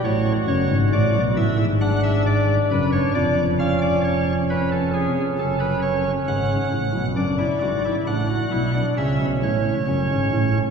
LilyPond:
<<
  \new Staff \with { instrumentName = "Pipe organ" } { \time 4/4 \key b \minor \tempo 4 = 67 << { cis''8 cis''8 d''8 e''8 fis''16 e''16 d''8 b'16 cis''16 d''8 | eis''16 d''16 cis''8 b'16 a'16 gis'8 a'16 b'16 cis''8 fis''4 | d''4 fis''4 e''8 cis''4. | } \\ { fis'2 d'2 | cis'1 | d'16 e'16 fis'16 e'16 d'16 fis'16 e'16 d'16 cis'4 cis'4 | } >> }
  \new Staff \with { instrumentName = "Pipe organ" } { \clef bass \time 4/4 \key b \minor <a,, a,>8 <fis,, fis,>16 <gis,, gis,>16 <a,, a,>16 <b,, b,>16 <a,, a,>16 <gis,, gis,>4~ <gis,, gis,>16 <fis,, fis,>8 <eis,, eis,>8~ | <eis,, eis,>2 <fis,, fis,>4 <gis,, gis,>8 <a,, a,>16 <b,, b,>16 | <fis,, fis,>8 <gis,, gis,>8 <a,, a,>8 <b,, b,>8 <cis, cis>16 <b,, b,>16 <a,, a,>8 <fis,, fis,>16 <gis,, gis,>16 <a,, a,>8 | }
>>